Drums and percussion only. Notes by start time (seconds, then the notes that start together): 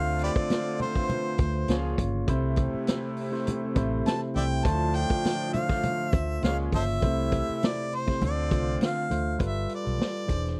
0.19 closed hi-hat
0.36 kick
0.50 snare, closed hi-hat, high conga
0.79 open hi-hat, low conga
0.95 kick
1.09 closed hi-hat, muted conga, low conga
1.38 kick, closed hi-hat, muted conga
1.68 snare, closed hi-hat, high conga
1.98 kick, closed hi-hat, high conga
2.28 kick, closed hi-hat, muted conga
2.56 kick, closed hi-hat
2.87 snare, closed hi-hat, high conga
3.17 open hi-hat
3.34 snare
3.47 closed hi-hat, muted conga, low conga
3.75 kick, closed hi-hat, muted conga
4.06 snare, closed hi-hat, high conga
4.36 closed hi-hat, high conga
4.65 kick, closed hi-hat, muted conga
4.94 closed hi-hat
5.10 kick
5.25 snare, closed hi-hat, high conga
5.53 closed hi-hat, low conga
5.69 kick, snare
5.83 closed hi-hat, muted conga, low conga
6.12 kick, closed hi-hat, muted conga
6.42 snare, closed hi-hat, high conga
6.72 kick, open hi-hat, high conga
7.02 kick, closed hi-hat, muted conga
7.32 kick, closed hi-hat
7.63 snare, closed hi-hat, high conga
7.92 open hi-hat
8.08 kick, snare
8.22 closed hi-hat, muted conga, low conga
8.51 kick, closed hi-hat, muted conga
8.81 snare, closed hi-hat, high conga
9.11 closed hi-hat, high conga
9.39 kick, closed hi-hat, muted conga
9.69 closed hi-hat
9.86 closed hi-hat
9.99 snare, high conga
10.16 closed hi-hat
10.28 kick, closed hi-hat, low conga
10.46 snare, closed hi-hat